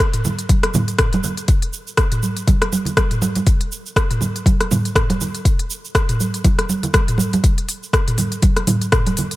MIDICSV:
0, 0, Header, 1, 2, 480
1, 0, Start_track
1, 0, Tempo, 495868
1, 1438, Time_signature, 4, 2, 24, 8
1, 9062, End_track
2, 0, Start_track
2, 0, Title_t, "Drums"
2, 0, Note_on_c, 9, 36, 116
2, 0, Note_on_c, 9, 37, 105
2, 0, Note_on_c, 9, 42, 67
2, 0, Note_on_c, 9, 82, 52
2, 92, Note_off_c, 9, 37, 0
2, 92, Note_off_c, 9, 42, 0
2, 94, Note_off_c, 9, 36, 0
2, 97, Note_off_c, 9, 82, 0
2, 130, Note_on_c, 9, 42, 46
2, 130, Note_on_c, 9, 45, 83
2, 135, Note_on_c, 9, 82, 37
2, 227, Note_off_c, 9, 42, 0
2, 227, Note_off_c, 9, 45, 0
2, 232, Note_off_c, 9, 82, 0
2, 239, Note_on_c, 9, 82, 89
2, 240, Note_on_c, 9, 63, 65
2, 241, Note_on_c, 9, 64, 91
2, 336, Note_off_c, 9, 63, 0
2, 336, Note_off_c, 9, 82, 0
2, 337, Note_off_c, 9, 64, 0
2, 373, Note_on_c, 9, 42, 32
2, 378, Note_on_c, 9, 82, 39
2, 470, Note_off_c, 9, 42, 0
2, 475, Note_off_c, 9, 82, 0
2, 477, Note_on_c, 9, 36, 115
2, 478, Note_on_c, 9, 42, 67
2, 478, Note_on_c, 9, 63, 96
2, 482, Note_on_c, 9, 82, 51
2, 574, Note_off_c, 9, 36, 0
2, 574, Note_off_c, 9, 42, 0
2, 575, Note_off_c, 9, 63, 0
2, 579, Note_off_c, 9, 82, 0
2, 613, Note_on_c, 9, 37, 65
2, 613, Note_on_c, 9, 42, 44
2, 709, Note_off_c, 9, 37, 0
2, 709, Note_off_c, 9, 42, 0
2, 714, Note_on_c, 9, 45, 74
2, 718, Note_on_c, 9, 82, 94
2, 721, Note_on_c, 9, 63, 91
2, 725, Note_on_c, 9, 64, 117
2, 810, Note_off_c, 9, 45, 0
2, 815, Note_off_c, 9, 82, 0
2, 818, Note_off_c, 9, 63, 0
2, 822, Note_off_c, 9, 64, 0
2, 852, Note_on_c, 9, 42, 31
2, 856, Note_on_c, 9, 82, 38
2, 948, Note_off_c, 9, 42, 0
2, 953, Note_off_c, 9, 82, 0
2, 954, Note_on_c, 9, 37, 111
2, 954, Note_on_c, 9, 42, 67
2, 954, Note_on_c, 9, 45, 78
2, 957, Note_on_c, 9, 36, 119
2, 959, Note_on_c, 9, 82, 52
2, 1051, Note_off_c, 9, 37, 0
2, 1051, Note_off_c, 9, 42, 0
2, 1051, Note_off_c, 9, 45, 0
2, 1053, Note_off_c, 9, 36, 0
2, 1056, Note_off_c, 9, 82, 0
2, 1091, Note_on_c, 9, 42, 45
2, 1096, Note_on_c, 9, 82, 36
2, 1102, Note_on_c, 9, 63, 110
2, 1188, Note_off_c, 9, 42, 0
2, 1192, Note_off_c, 9, 82, 0
2, 1198, Note_on_c, 9, 82, 94
2, 1199, Note_off_c, 9, 63, 0
2, 1200, Note_on_c, 9, 64, 94
2, 1294, Note_off_c, 9, 82, 0
2, 1296, Note_off_c, 9, 64, 0
2, 1330, Note_on_c, 9, 42, 30
2, 1335, Note_on_c, 9, 82, 38
2, 1427, Note_off_c, 9, 42, 0
2, 1431, Note_off_c, 9, 82, 0
2, 1434, Note_on_c, 9, 42, 66
2, 1436, Note_on_c, 9, 36, 119
2, 1438, Note_on_c, 9, 82, 56
2, 1530, Note_off_c, 9, 42, 0
2, 1532, Note_off_c, 9, 36, 0
2, 1535, Note_off_c, 9, 82, 0
2, 1571, Note_on_c, 9, 42, 43
2, 1668, Note_off_c, 9, 42, 0
2, 1676, Note_on_c, 9, 82, 93
2, 1773, Note_off_c, 9, 82, 0
2, 1814, Note_on_c, 9, 82, 40
2, 1911, Note_off_c, 9, 82, 0
2, 1911, Note_on_c, 9, 37, 106
2, 1911, Note_on_c, 9, 42, 61
2, 1915, Note_on_c, 9, 36, 116
2, 1916, Note_on_c, 9, 82, 52
2, 2008, Note_off_c, 9, 37, 0
2, 2008, Note_off_c, 9, 42, 0
2, 2012, Note_off_c, 9, 36, 0
2, 2013, Note_off_c, 9, 82, 0
2, 2049, Note_on_c, 9, 42, 44
2, 2049, Note_on_c, 9, 45, 85
2, 2054, Note_on_c, 9, 82, 38
2, 2146, Note_off_c, 9, 42, 0
2, 2146, Note_off_c, 9, 45, 0
2, 2150, Note_off_c, 9, 82, 0
2, 2157, Note_on_c, 9, 63, 62
2, 2157, Note_on_c, 9, 82, 94
2, 2254, Note_off_c, 9, 63, 0
2, 2254, Note_off_c, 9, 82, 0
2, 2290, Note_on_c, 9, 42, 30
2, 2295, Note_on_c, 9, 82, 42
2, 2387, Note_off_c, 9, 42, 0
2, 2391, Note_off_c, 9, 82, 0
2, 2396, Note_on_c, 9, 36, 118
2, 2396, Note_on_c, 9, 42, 64
2, 2398, Note_on_c, 9, 63, 94
2, 2401, Note_on_c, 9, 64, 92
2, 2401, Note_on_c, 9, 82, 54
2, 2493, Note_off_c, 9, 36, 0
2, 2493, Note_off_c, 9, 42, 0
2, 2495, Note_off_c, 9, 63, 0
2, 2498, Note_off_c, 9, 64, 0
2, 2498, Note_off_c, 9, 82, 0
2, 2533, Note_on_c, 9, 37, 66
2, 2533, Note_on_c, 9, 42, 43
2, 2630, Note_off_c, 9, 37, 0
2, 2630, Note_off_c, 9, 42, 0
2, 2638, Note_on_c, 9, 63, 96
2, 2640, Note_on_c, 9, 82, 94
2, 2735, Note_off_c, 9, 63, 0
2, 2737, Note_off_c, 9, 82, 0
2, 2761, Note_on_c, 9, 64, 80
2, 2772, Note_on_c, 9, 42, 30
2, 2777, Note_on_c, 9, 82, 39
2, 2858, Note_off_c, 9, 64, 0
2, 2869, Note_off_c, 9, 42, 0
2, 2873, Note_on_c, 9, 63, 67
2, 2874, Note_off_c, 9, 82, 0
2, 2875, Note_on_c, 9, 36, 121
2, 2875, Note_on_c, 9, 37, 112
2, 2875, Note_on_c, 9, 42, 62
2, 2880, Note_on_c, 9, 82, 55
2, 2970, Note_off_c, 9, 63, 0
2, 2972, Note_off_c, 9, 36, 0
2, 2972, Note_off_c, 9, 37, 0
2, 2972, Note_off_c, 9, 42, 0
2, 2977, Note_off_c, 9, 82, 0
2, 3010, Note_on_c, 9, 42, 43
2, 3010, Note_on_c, 9, 45, 81
2, 3015, Note_on_c, 9, 82, 37
2, 3107, Note_off_c, 9, 42, 0
2, 3107, Note_off_c, 9, 45, 0
2, 3111, Note_off_c, 9, 82, 0
2, 3114, Note_on_c, 9, 63, 115
2, 3119, Note_on_c, 9, 82, 96
2, 3211, Note_off_c, 9, 63, 0
2, 3215, Note_off_c, 9, 82, 0
2, 3247, Note_on_c, 9, 42, 28
2, 3252, Note_on_c, 9, 82, 41
2, 3253, Note_on_c, 9, 63, 91
2, 3344, Note_off_c, 9, 42, 0
2, 3349, Note_off_c, 9, 82, 0
2, 3350, Note_off_c, 9, 63, 0
2, 3355, Note_on_c, 9, 42, 65
2, 3356, Note_on_c, 9, 36, 126
2, 3359, Note_on_c, 9, 82, 57
2, 3451, Note_off_c, 9, 42, 0
2, 3452, Note_off_c, 9, 36, 0
2, 3456, Note_off_c, 9, 82, 0
2, 3491, Note_on_c, 9, 42, 43
2, 3588, Note_off_c, 9, 42, 0
2, 3601, Note_on_c, 9, 82, 96
2, 3698, Note_off_c, 9, 82, 0
2, 3739, Note_on_c, 9, 82, 40
2, 3835, Note_on_c, 9, 36, 126
2, 3836, Note_off_c, 9, 82, 0
2, 3839, Note_on_c, 9, 37, 108
2, 3839, Note_on_c, 9, 42, 60
2, 3843, Note_on_c, 9, 82, 53
2, 3932, Note_off_c, 9, 36, 0
2, 3935, Note_off_c, 9, 37, 0
2, 3935, Note_off_c, 9, 42, 0
2, 3940, Note_off_c, 9, 82, 0
2, 3974, Note_on_c, 9, 42, 43
2, 3974, Note_on_c, 9, 45, 89
2, 3979, Note_on_c, 9, 82, 40
2, 4071, Note_off_c, 9, 42, 0
2, 4071, Note_off_c, 9, 45, 0
2, 4072, Note_on_c, 9, 64, 81
2, 4074, Note_on_c, 9, 63, 65
2, 4076, Note_off_c, 9, 82, 0
2, 4083, Note_on_c, 9, 82, 94
2, 4169, Note_off_c, 9, 64, 0
2, 4171, Note_off_c, 9, 63, 0
2, 4180, Note_off_c, 9, 82, 0
2, 4218, Note_on_c, 9, 42, 29
2, 4222, Note_on_c, 9, 82, 43
2, 4314, Note_off_c, 9, 42, 0
2, 4316, Note_on_c, 9, 36, 119
2, 4319, Note_off_c, 9, 82, 0
2, 4320, Note_on_c, 9, 63, 98
2, 4322, Note_on_c, 9, 42, 64
2, 4327, Note_on_c, 9, 82, 55
2, 4412, Note_off_c, 9, 36, 0
2, 4417, Note_off_c, 9, 63, 0
2, 4419, Note_off_c, 9, 42, 0
2, 4423, Note_off_c, 9, 82, 0
2, 4458, Note_on_c, 9, 37, 62
2, 4458, Note_on_c, 9, 42, 43
2, 4555, Note_off_c, 9, 37, 0
2, 4555, Note_off_c, 9, 42, 0
2, 4559, Note_on_c, 9, 45, 81
2, 4562, Note_on_c, 9, 64, 111
2, 4564, Note_on_c, 9, 82, 99
2, 4566, Note_on_c, 9, 63, 96
2, 4656, Note_off_c, 9, 45, 0
2, 4659, Note_off_c, 9, 64, 0
2, 4661, Note_off_c, 9, 82, 0
2, 4662, Note_off_c, 9, 63, 0
2, 4698, Note_on_c, 9, 42, 29
2, 4702, Note_on_c, 9, 82, 40
2, 4794, Note_off_c, 9, 42, 0
2, 4797, Note_on_c, 9, 36, 124
2, 4799, Note_off_c, 9, 82, 0
2, 4800, Note_on_c, 9, 37, 108
2, 4800, Note_on_c, 9, 42, 64
2, 4800, Note_on_c, 9, 45, 83
2, 4805, Note_on_c, 9, 82, 55
2, 4893, Note_off_c, 9, 36, 0
2, 4897, Note_off_c, 9, 37, 0
2, 4897, Note_off_c, 9, 42, 0
2, 4897, Note_off_c, 9, 45, 0
2, 4901, Note_off_c, 9, 82, 0
2, 4935, Note_on_c, 9, 63, 119
2, 4936, Note_on_c, 9, 42, 41
2, 4941, Note_on_c, 9, 82, 39
2, 5032, Note_off_c, 9, 63, 0
2, 5033, Note_off_c, 9, 42, 0
2, 5038, Note_off_c, 9, 82, 0
2, 5042, Note_on_c, 9, 64, 90
2, 5042, Note_on_c, 9, 82, 99
2, 5139, Note_off_c, 9, 64, 0
2, 5139, Note_off_c, 9, 82, 0
2, 5174, Note_on_c, 9, 42, 28
2, 5179, Note_on_c, 9, 82, 40
2, 5271, Note_off_c, 9, 42, 0
2, 5276, Note_off_c, 9, 82, 0
2, 5277, Note_on_c, 9, 36, 123
2, 5280, Note_on_c, 9, 42, 66
2, 5284, Note_on_c, 9, 82, 55
2, 5374, Note_off_c, 9, 36, 0
2, 5376, Note_off_c, 9, 42, 0
2, 5381, Note_off_c, 9, 82, 0
2, 5414, Note_on_c, 9, 42, 44
2, 5511, Note_off_c, 9, 42, 0
2, 5521, Note_on_c, 9, 82, 96
2, 5618, Note_off_c, 9, 82, 0
2, 5662, Note_on_c, 9, 82, 41
2, 5758, Note_on_c, 9, 36, 121
2, 5759, Note_off_c, 9, 82, 0
2, 5760, Note_on_c, 9, 37, 100
2, 5760, Note_on_c, 9, 42, 63
2, 5765, Note_on_c, 9, 82, 53
2, 5855, Note_off_c, 9, 36, 0
2, 5856, Note_off_c, 9, 37, 0
2, 5856, Note_off_c, 9, 42, 0
2, 5861, Note_off_c, 9, 82, 0
2, 5896, Note_on_c, 9, 42, 45
2, 5896, Note_on_c, 9, 45, 89
2, 5900, Note_on_c, 9, 82, 40
2, 5992, Note_off_c, 9, 42, 0
2, 5992, Note_off_c, 9, 45, 0
2, 5997, Note_off_c, 9, 82, 0
2, 6005, Note_on_c, 9, 63, 66
2, 6005, Note_on_c, 9, 82, 97
2, 6101, Note_off_c, 9, 82, 0
2, 6102, Note_off_c, 9, 63, 0
2, 6138, Note_on_c, 9, 42, 31
2, 6142, Note_on_c, 9, 82, 43
2, 6234, Note_off_c, 9, 42, 0
2, 6238, Note_on_c, 9, 36, 120
2, 6238, Note_on_c, 9, 63, 97
2, 6239, Note_off_c, 9, 82, 0
2, 6239, Note_on_c, 9, 42, 66
2, 6242, Note_on_c, 9, 64, 91
2, 6243, Note_on_c, 9, 82, 53
2, 6335, Note_off_c, 9, 36, 0
2, 6335, Note_off_c, 9, 42, 0
2, 6335, Note_off_c, 9, 63, 0
2, 6339, Note_off_c, 9, 64, 0
2, 6340, Note_off_c, 9, 82, 0
2, 6375, Note_on_c, 9, 37, 61
2, 6375, Note_on_c, 9, 42, 42
2, 6472, Note_off_c, 9, 37, 0
2, 6472, Note_off_c, 9, 42, 0
2, 6479, Note_on_c, 9, 63, 89
2, 6481, Note_on_c, 9, 82, 98
2, 6576, Note_off_c, 9, 63, 0
2, 6578, Note_off_c, 9, 82, 0
2, 6613, Note_on_c, 9, 64, 84
2, 6614, Note_on_c, 9, 42, 29
2, 6618, Note_on_c, 9, 82, 40
2, 6709, Note_off_c, 9, 64, 0
2, 6710, Note_off_c, 9, 42, 0
2, 6711, Note_on_c, 9, 63, 62
2, 6715, Note_off_c, 9, 82, 0
2, 6717, Note_on_c, 9, 37, 104
2, 6717, Note_on_c, 9, 42, 65
2, 6719, Note_on_c, 9, 36, 127
2, 6722, Note_on_c, 9, 82, 54
2, 6808, Note_off_c, 9, 63, 0
2, 6814, Note_off_c, 9, 37, 0
2, 6814, Note_off_c, 9, 42, 0
2, 6815, Note_off_c, 9, 36, 0
2, 6819, Note_off_c, 9, 82, 0
2, 6855, Note_on_c, 9, 42, 44
2, 6855, Note_on_c, 9, 45, 87
2, 6860, Note_on_c, 9, 82, 37
2, 6948, Note_on_c, 9, 63, 112
2, 6952, Note_off_c, 9, 42, 0
2, 6952, Note_off_c, 9, 45, 0
2, 6957, Note_off_c, 9, 82, 0
2, 6967, Note_on_c, 9, 82, 95
2, 7045, Note_off_c, 9, 63, 0
2, 7063, Note_off_c, 9, 82, 0
2, 7097, Note_on_c, 9, 42, 29
2, 7100, Note_on_c, 9, 63, 98
2, 7102, Note_on_c, 9, 82, 39
2, 7194, Note_off_c, 9, 42, 0
2, 7197, Note_off_c, 9, 63, 0
2, 7199, Note_off_c, 9, 82, 0
2, 7199, Note_on_c, 9, 36, 117
2, 7199, Note_on_c, 9, 42, 69
2, 7204, Note_on_c, 9, 82, 51
2, 7296, Note_off_c, 9, 36, 0
2, 7296, Note_off_c, 9, 42, 0
2, 7301, Note_off_c, 9, 82, 0
2, 7337, Note_on_c, 9, 42, 45
2, 7434, Note_off_c, 9, 42, 0
2, 7440, Note_on_c, 9, 46, 84
2, 7444, Note_on_c, 9, 82, 88
2, 7536, Note_off_c, 9, 46, 0
2, 7541, Note_off_c, 9, 82, 0
2, 7582, Note_on_c, 9, 82, 39
2, 7679, Note_off_c, 9, 82, 0
2, 7679, Note_on_c, 9, 36, 117
2, 7682, Note_on_c, 9, 37, 100
2, 7682, Note_on_c, 9, 42, 66
2, 7687, Note_on_c, 9, 82, 52
2, 7776, Note_off_c, 9, 36, 0
2, 7779, Note_off_c, 9, 37, 0
2, 7779, Note_off_c, 9, 42, 0
2, 7783, Note_off_c, 9, 82, 0
2, 7818, Note_on_c, 9, 42, 47
2, 7818, Note_on_c, 9, 45, 90
2, 7823, Note_on_c, 9, 82, 38
2, 7915, Note_off_c, 9, 42, 0
2, 7915, Note_off_c, 9, 45, 0
2, 7916, Note_on_c, 9, 64, 86
2, 7917, Note_on_c, 9, 46, 77
2, 7920, Note_off_c, 9, 82, 0
2, 7920, Note_on_c, 9, 63, 68
2, 7922, Note_on_c, 9, 82, 93
2, 8013, Note_off_c, 9, 46, 0
2, 8013, Note_off_c, 9, 64, 0
2, 8016, Note_off_c, 9, 63, 0
2, 8018, Note_off_c, 9, 82, 0
2, 8052, Note_on_c, 9, 42, 32
2, 8056, Note_on_c, 9, 82, 39
2, 8148, Note_off_c, 9, 42, 0
2, 8153, Note_off_c, 9, 82, 0
2, 8153, Note_on_c, 9, 63, 86
2, 8155, Note_on_c, 9, 42, 66
2, 8159, Note_on_c, 9, 36, 117
2, 8160, Note_on_c, 9, 82, 52
2, 8249, Note_off_c, 9, 63, 0
2, 8252, Note_off_c, 9, 42, 0
2, 8256, Note_off_c, 9, 36, 0
2, 8257, Note_off_c, 9, 82, 0
2, 8291, Note_on_c, 9, 37, 59
2, 8291, Note_on_c, 9, 42, 46
2, 8388, Note_off_c, 9, 37, 0
2, 8388, Note_off_c, 9, 42, 0
2, 8395, Note_on_c, 9, 45, 81
2, 8395, Note_on_c, 9, 46, 87
2, 8395, Note_on_c, 9, 63, 100
2, 8400, Note_on_c, 9, 64, 92
2, 8400, Note_on_c, 9, 82, 95
2, 8491, Note_off_c, 9, 45, 0
2, 8491, Note_off_c, 9, 46, 0
2, 8491, Note_off_c, 9, 63, 0
2, 8496, Note_off_c, 9, 64, 0
2, 8496, Note_off_c, 9, 82, 0
2, 8533, Note_on_c, 9, 42, 32
2, 8538, Note_on_c, 9, 82, 39
2, 8630, Note_off_c, 9, 42, 0
2, 8634, Note_off_c, 9, 82, 0
2, 8637, Note_on_c, 9, 37, 102
2, 8637, Note_on_c, 9, 42, 68
2, 8637, Note_on_c, 9, 45, 88
2, 8639, Note_on_c, 9, 36, 117
2, 8641, Note_on_c, 9, 82, 52
2, 8733, Note_off_c, 9, 37, 0
2, 8733, Note_off_c, 9, 42, 0
2, 8733, Note_off_c, 9, 45, 0
2, 8736, Note_off_c, 9, 36, 0
2, 8738, Note_off_c, 9, 82, 0
2, 8775, Note_on_c, 9, 42, 44
2, 8776, Note_on_c, 9, 63, 102
2, 8779, Note_on_c, 9, 82, 36
2, 8871, Note_off_c, 9, 42, 0
2, 8872, Note_off_c, 9, 63, 0
2, 8876, Note_off_c, 9, 82, 0
2, 8876, Note_on_c, 9, 46, 78
2, 8881, Note_on_c, 9, 82, 97
2, 8889, Note_on_c, 9, 64, 94
2, 8973, Note_off_c, 9, 46, 0
2, 8978, Note_off_c, 9, 82, 0
2, 8986, Note_off_c, 9, 64, 0
2, 9014, Note_on_c, 9, 42, 31
2, 9019, Note_on_c, 9, 82, 38
2, 9062, Note_off_c, 9, 42, 0
2, 9062, Note_off_c, 9, 82, 0
2, 9062, End_track
0, 0, End_of_file